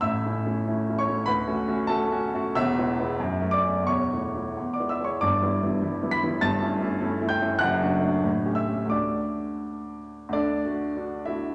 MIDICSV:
0, 0, Header, 1, 2, 480
1, 0, Start_track
1, 0, Key_signature, 3, "major"
1, 0, Tempo, 645856
1, 25, Time_signature, 2, 2, 24, 8
1, 504, Tempo, 600000
1, 1464, Tempo, 650759
1, 2424, Tempo, 678733
1, 3864, Tempo, 598205
1, 3865, Key_signature, 2, "major"
1, 5784, Tempo, 662252
1, 6744, Tempo, 710900
1, 7704, Tempo, 612245
1, 8639, End_track
2, 0, Start_track
2, 0, Title_t, "Grand piano"
2, 0, Program_c, 0, 0
2, 0, Control_c, 0, 64, 127
2, 6, Note_on_c, 0, 88, 111
2, 10, Note_on_c, 0, 33, 75
2, 15, Note_on_c, 0, 45, 83
2, 21, Note_on_c, 0, 76, 84
2, 37, Control_c, 0, 64, 0
2, 173, Note_off_c, 0, 33, 0
2, 173, Control_c, 0, 64, 127
2, 176, Note_off_c, 0, 45, 0
2, 190, Note_on_c, 0, 57, 55
2, 194, Note_on_c, 0, 61, 53
2, 195, Note_on_c, 0, 64, 60
2, 330, Note_off_c, 0, 57, 0
2, 335, Note_off_c, 0, 61, 0
2, 335, Note_off_c, 0, 64, 0
2, 341, Note_on_c, 0, 57, 57
2, 346, Note_on_c, 0, 61, 54
2, 347, Note_on_c, 0, 64, 62
2, 485, Note_off_c, 0, 57, 0
2, 488, Note_off_c, 0, 61, 0
2, 488, Note_off_c, 0, 64, 0
2, 500, Note_on_c, 0, 57, 59
2, 504, Note_on_c, 0, 61, 58
2, 509, Note_on_c, 0, 64, 61
2, 649, Note_off_c, 0, 57, 0
2, 652, Note_off_c, 0, 61, 0
2, 654, Note_off_c, 0, 64, 0
2, 674, Note_on_c, 0, 61, 54
2, 675, Note_on_c, 0, 57, 61
2, 677, Note_on_c, 0, 64, 62
2, 714, Note_off_c, 0, 76, 0
2, 738, Note_off_c, 0, 88, 0
2, 750, Note_on_c, 0, 85, 104
2, 763, Note_on_c, 0, 73, 74
2, 814, Note_off_c, 0, 57, 0
2, 814, Note_off_c, 0, 61, 0
2, 816, Note_off_c, 0, 64, 0
2, 826, Note_on_c, 0, 57, 59
2, 828, Note_on_c, 0, 61, 63
2, 835, Note_on_c, 0, 64, 67
2, 967, Note_off_c, 0, 57, 0
2, 967, Note_on_c, 0, 83, 118
2, 968, Note_off_c, 0, 61, 0
2, 972, Note_off_c, 0, 64, 0
2, 975, Note_off_c, 0, 73, 0
2, 976, Note_on_c, 0, 38, 90
2, 983, Note_on_c, 0, 71, 91
2, 984, Note_off_c, 0, 85, 0
2, 995, Control_c, 0, 64, 0
2, 1115, Control_c, 0, 64, 127
2, 1132, Note_off_c, 0, 38, 0
2, 1142, Note_on_c, 0, 57, 68
2, 1143, Note_on_c, 0, 61, 67
2, 1143, Note_on_c, 0, 66, 69
2, 1285, Note_off_c, 0, 57, 0
2, 1285, Note_off_c, 0, 61, 0
2, 1285, Note_off_c, 0, 66, 0
2, 1302, Note_on_c, 0, 61, 71
2, 1306, Note_on_c, 0, 57, 66
2, 1308, Note_on_c, 0, 66, 76
2, 1432, Note_off_c, 0, 71, 0
2, 1449, Note_off_c, 0, 61, 0
2, 1451, Note_off_c, 0, 57, 0
2, 1452, Note_off_c, 0, 66, 0
2, 1456, Note_off_c, 0, 83, 0
2, 1460, Note_on_c, 0, 81, 114
2, 1472, Note_on_c, 0, 61, 78
2, 1473, Note_on_c, 0, 69, 96
2, 1474, Note_on_c, 0, 57, 79
2, 1476, Note_on_c, 0, 66, 81
2, 1613, Note_off_c, 0, 61, 0
2, 1614, Note_off_c, 0, 57, 0
2, 1615, Note_off_c, 0, 66, 0
2, 1635, Note_on_c, 0, 57, 62
2, 1639, Note_on_c, 0, 61, 74
2, 1644, Note_on_c, 0, 66, 76
2, 1784, Note_off_c, 0, 57, 0
2, 1786, Note_off_c, 0, 61, 0
2, 1789, Note_off_c, 0, 66, 0
2, 1807, Note_on_c, 0, 57, 69
2, 1808, Note_on_c, 0, 61, 69
2, 1814, Note_on_c, 0, 66, 79
2, 1935, Note_off_c, 0, 69, 0
2, 1950, Note_off_c, 0, 57, 0
2, 1950, Note_off_c, 0, 61, 0
2, 1954, Note_off_c, 0, 66, 0
2, 1958, Note_off_c, 0, 81, 0
2, 1961, Note_on_c, 0, 28, 97
2, 1963, Note_on_c, 0, 88, 127
2, 1968, Note_on_c, 0, 40, 101
2, 1970, Note_on_c, 0, 76, 109
2, 1974, Control_c, 0, 64, 0
2, 2094, Control_c, 0, 64, 127
2, 2112, Note_off_c, 0, 28, 0
2, 2116, Note_off_c, 0, 40, 0
2, 2130, Note_on_c, 0, 59, 62
2, 2132, Note_on_c, 0, 56, 65
2, 2134, Note_on_c, 0, 64, 70
2, 2261, Note_off_c, 0, 59, 0
2, 2262, Note_off_c, 0, 56, 0
2, 2263, Note_off_c, 0, 64, 0
2, 2285, Note_on_c, 0, 56, 63
2, 2287, Note_on_c, 0, 64, 72
2, 2290, Note_on_c, 0, 59, 66
2, 2418, Note_off_c, 0, 56, 0
2, 2419, Note_off_c, 0, 64, 0
2, 2420, Note_off_c, 0, 59, 0
2, 2436, Control_c, 0, 64, 0
2, 2437, Note_on_c, 0, 42, 86
2, 2559, Control_c, 0, 64, 127
2, 2581, Note_off_c, 0, 42, 0
2, 2587, Note_on_c, 0, 61, 65
2, 2589, Note_on_c, 0, 57, 61
2, 2635, Note_off_c, 0, 76, 0
2, 2659, Note_off_c, 0, 88, 0
2, 2659, Note_on_c, 0, 86, 105
2, 2674, Note_on_c, 0, 74, 77
2, 2727, Note_off_c, 0, 61, 0
2, 2728, Note_off_c, 0, 57, 0
2, 2751, Note_on_c, 0, 57, 51
2, 2753, Note_on_c, 0, 61, 61
2, 2880, Note_on_c, 0, 40, 76
2, 2894, Note_off_c, 0, 57, 0
2, 2895, Note_off_c, 0, 61, 0
2, 2895, Note_off_c, 0, 74, 0
2, 2904, Note_off_c, 0, 86, 0
2, 2908, Note_on_c, 0, 28, 71
2, 2909, Note_on_c, 0, 85, 102
2, 2916, Control_c, 0, 64, 0
2, 2923, Note_on_c, 0, 73, 75
2, 3053, Note_off_c, 0, 40, 0
2, 3068, Note_off_c, 0, 28, 0
2, 3072, Control_c, 0, 64, 127
2, 3098, Note_on_c, 0, 64, 52
2, 3099, Note_on_c, 0, 57, 50
2, 3233, Note_off_c, 0, 64, 0
2, 3234, Note_off_c, 0, 57, 0
2, 3248, Note_on_c, 0, 57, 50
2, 3253, Note_on_c, 0, 64, 57
2, 3388, Note_off_c, 0, 57, 0
2, 3391, Note_off_c, 0, 64, 0
2, 3409, Note_on_c, 0, 40, 63
2, 3412, Control_c, 0, 64, 0
2, 3498, Note_off_c, 0, 73, 0
2, 3520, Note_off_c, 0, 85, 0
2, 3524, Note_on_c, 0, 86, 73
2, 3527, Control_c, 0, 64, 127
2, 3538, Note_on_c, 0, 74, 56
2, 3558, Note_off_c, 0, 40, 0
2, 3568, Note_on_c, 0, 59, 47
2, 3571, Note_on_c, 0, 64, 46
2, 3573, Note_on_c, 0, 56, 44
2, 3636, Note_on_c, 0, 88, 84
2, 3639, Note_off_c, 0, 74, 0
2, 3640, Note_off_c, 0, 86, 0
2, 3647, Note_on_c, 0, 76, 62
2, 3700, Note_off_c, 0, 56, 0
2, 3701, Note_off_c, 0, 59, 0
2, 3706, Note_off_c, 0, 64, 0
2, 3710, Note_on_c, 0, 56, 49
2, 3712, Note_on_c, 0, 59, 44
2, 3719, Note_on_c, 0, 64, 50
2, 3742, Note_on_c, 0, 85, 74
2, 3750, Note_off_c, 0, 76, 0
2, 3751, Note_on_c, 0, 73, 62
2, 3752, Note_off_c, 0, 88, 0
2, 3847, Note_off_c, 0, 56, 0
2, 3848, Note_off_c, 0, 59, 0
2, 3852, Note_off_c, 0, 64, 0
2, 3856, Note_off_c, 0, 73, 0
2, 3859, Note_off_c, 0, 85, 0
2, 3859, Note_on_c, 0, 31, 73
2, 3859, Note_on_c, 0, 86, 110
2, 3868, Note_on_c, 0, 74, 80
2, 3871, Note_on_c, 0, 43, 79
2, 3879, Control_c, 0, 64, 0
2, 3992, Control_c, 0, 64, 127
2, 4022, Note_off_c, 0, 31, 0
2, 4028, Note_on_c, 0, 55, 53
2, 4029, Note_off_c, 0, 43, 0
2, 4031, Note_on_c, 0, 64, 63
2, 4033, Note_on_c, 0, 59, 58
2, 4177, Note_off_c, 0, 55, 0
2, 4179, Note_off_c, 0, 64, 0
2, 4180, Note_off_c, 0, 59, 0
2, 4196, Note_on_c, 0, 55, 56
2, 4198, Note_on_c, 0, 59, 57
2, 4203, Note_on_c, 0, 64, 61
2, 4338, Note_off_c, 0, 55, 0
2, 4341, Note_off_c, 0, 59, 0
2, 4345, Note_off_c, 0, 64, 0
2, 4350, Note_on_c, 0, 55, 60
2, 4353, Note_on_c, 0, 59, 61
2, 4360, Note_on_c, 0, 64, 64
2, 4497, Note_off_c, 0, 55, 0
2, 4499, Note_off_c, 0, 59, 0
2, 4503, Note_off_c, 0, 64, 0
2, 4518, Note_on_c, 0, 59, 56
2, 4520, Note_on_c, 0, 55, 51
2, 4521, Note_on_c, 0, 64, 64
2, 4565, Note_off_c, 0, 74, 0
2, 4585, Note_on_c, 0, 95, 113
2, 4593, Note_off_c, 0, 86, 0
2, 4593, Note_on_c, 0, 83, 87
2, 4660, Note_off_c, 0, 59, 0
2, 4661, Note_off_c, 0, 55, 0
2, 4662, Note_off_c, 0, 64, 0
2, 4678, Note_on_c, 0, 55, 61
2, 4683, Note_on_c, 0, 59, 63
2, 4683, Note_on_c, 0, 64, 68
2, 4815, Note_off_c, 0, 83, 0
2, 4819, Note_off_c, 0, 55, 0
2, 4822, Note_off_c, 0, 59, 0
2, 4822, Note_off_c, 0, 64, 0
2, 4822, Note_on_c, 0, 31, 81
2, 4825, Note_on_c, 0, 93, 126
2, 4827, Note_off_c, 0, 95, 0
2, 4832, Note_on_c, 0, 43, 94
2, 4834, Note_on_c, 0, 81, 99
2, 4848, Control_c, 0, 64, 0
2, 4976, Control_c, 0, 64, 127
2, 4979, Note_off_c, 0, 31, 0
2, 4981, Note_on_c, 0, 57, 60
2, 4984, Note_off_c, 0, 43, 0
2, 4984, Note_on_c, 0, 61, 59
2, 4993, Note_on_c, 0, 64, 68
2, 5124, Note_off_c, 0, 57, 0
2, 5125, Note_off_c, 0, 61, 0
2, 5130, Note_off_c, 0, 64, 0
2, 5146, Note_on_c, 0, 57, 68
2, 5147, Note_on_c, 0, 61, 63
2, 5154, Note_on_c, 0, 64, 77
2, 5285, Note_off_c, 0, 57, 0
2, 5285, Note_off_c, 0, 61, 0
2, 5289, Note_off_c, 0, 64, 0
2, 5301, Note_on_c, 0, 57, 73
2, 5303, Note_on_c, 0, 61, 70
2, 5306, Note_on_c, 0, 64, 78
2, 5443, Note_off_c, 0, 57, 0
2, 5444, Note_off_c, 0, 61, 0
2, 5445, Note_off_c, 0, 64, 0
2, 5465, Note_on_c, 0, 57, 62
2, 5470, Note_on_c, 0, 61, 61
2, 5471, Note_on_c, 0, 64, 72
2, 5507, Note_off_c, 0, 81, 0
2, 5525, Note_on_c, 0, 91, 113
2, 5534, Note_off_c, 0, 93, 0
2, 5537, Note_on_c, 0, 79, 96
2, 5608, Note_off_c, 0, 57, 0
2, 5611, Note_off_c, 0, 61, 0
2, 5611, Note_off_c, 0, 64, 0
2, 5630, Note_on_c, 0, 57, 62
2, 5631, Note_on_c, 0, 61, 64
2, 5634, Note_on_c, 0, 64, 70
2, 5766, Note_on_c, 0, 90, 127
2, 5767, Note_off_c, 0, 79, 0
2, 5771, Note_on_c, 0, 30, 92
2, 5774, Note_off_c, 0, 57, 0
2, 5775, Note_off_c, 0, 61, 0
2, 5776, Note_off_c, 0, 64, 0
2, 5779, Note_off_c, 0, 91, 0
2, 5780, Note_on_c, 0, 42, 100
2, 5785, Note_on_c, 0, 78, 99
2, 5798, Control_c, 0, 64, 0
2, 5915, Control_c, 0, 64, 127
2, 5925, Note_off_c, 0, 30, 0
2, 5925, Note_on_c, 0, 57, 55
2, 5927, Note_on_c, 0, 62, 59
2, 5929, Note_off_c, 0, 42, 0
2, 5933, Note_on_c, 0, 66, 71
2, 6059, Note_off_c, 0, 57, 0
2, 6061, Note_off_c, 0, 62, 0
2, 6067, Note_off_c, 0, 66, 0
2, 6070, Note_on_c, 0, 57, 64
2, 6072, Note_on_c, 0, 62, 63
2, 6077, Note_on_c, 0, 66, 66
2, 6223, Note_off_c, 0, 57, 0
2, 6224, Note_off_c, 0, 62, 0
2, 6227, Note_off_c, 0, 66, 0
2, 6230, Note_on_c, 0, 45, 82
2, 6265, Control_c, 0, 64, 0
2, 6397, Note_on_c, 0, 61, 51
2, 6398, Note_off_c, 0, 45, 0
2, 6398, Note_on_c, 0, 57, 52
2, 6398, Note_on_c, 0, 67, 56
2, 6408, Control_c, 0, 64, 127
2, 6466, Note_off_c, 0, 78, 0
2, 6467, Note_on_c, 0, 88, 90
2, 6472, Note_on_c, 0, 76, 72
2, 6486, Note_off_c, 0, 90, 0
2, 6542, Note_off_c, 0, 57, 0
2, 6548, Note_off_c, 0, 61, 0
2, 6552, Note_off_c, 0, 67, 0
2, 6553, Note_on_c, 0, 57, 48
2, 6559, Note_on_c, 0, 61, 49
2, 6563, Note_on_c, 0, 67, 52
2, 6688, Note_off_c, 0, 57, 0
2, 6690, Note_on_c, 0, 38, 64
2, 6699, Note_on_c, 0, 57, 51
2, 6708, Note_on_c, 0, 62, 55
2, 6715, Note_off_c, 0, 76, 0
2, 6717, Note_on_c, 0, 86, 83
2, 6718, Note_off_c, 0, 61, 0
2, 6720, Note_off_c, 0, 67, 0
2, 6723, Note_on_c, 0, 66, 50
2, 6729, Note_on_c, 0, 74, 67
2, 6731, Note_off_c, 0, 88, 0
2, 6758, Control_c, 0, 64, 0
2, 6895, Control_c, 0, 64, 127
2, 7189, Note_off_c, 0, 74, 0
2, 7210, Note_off_c, 0, 86, 0
2, 7650, Note_off_c, 0, 38, 0
2, 7656, Note_off_c, 0, 57, 0
2, 7660, Note_off_c, 0, 62, 0
2, 7660, Note_on_c, 0, 38, 68
2, 7667, Note_off_c, 0, 66, 0
2, 7687, Note_on_c, 0, 74, 96
2, 7690, Note_on_c, 0, 69, 67
2, 7692, Note_on_c, 0, 62, 75
2, 7719, Control_c, 0, 64, 0
2, 7844, Control_c, 0, 64, 127
2, 7935, Note_on_c, 0, 57, 51
2, 7937, Note_on_c, 0, 66, 54
2, 8156, Note_off_c, 0, 57, 0
2, 8157, Note_off_c, 0, 66, 0
2, 8170, Note_off_c, 0, 62, 0
2, 8182, Note_on_c, 0, 62, 52
2, 8184, Note_on_c, 0, 66, 55
2, 8386, Note_off_c, 0, 69, 0
2, 8399, Note_off_c, 0, 62, 0
2, 8400, Note_off_c, 0, 66, 0
2, 8409, Note_on_c, 0, 76, 81
2, 8416, Note_off_c, 0, 74, 0
2, 8418, Note_on_c, 0, 64, 63
2, 8419, Note_on_c, 0, 57, 52
2, 8422, Note_on_c, 0, 66, 51
2, 8609, Note_off_c, 0, 38, 0
2, 8637, Note_off_c, 0, 57, 0
2, 8638, Note_off_c, 0, 66, 0
2, 8639, Note_off_c, 0, 64, 0
2, 8639, Note_off_c, 0, 76, 0
2, 8639, End_track
0, 0, End_of_file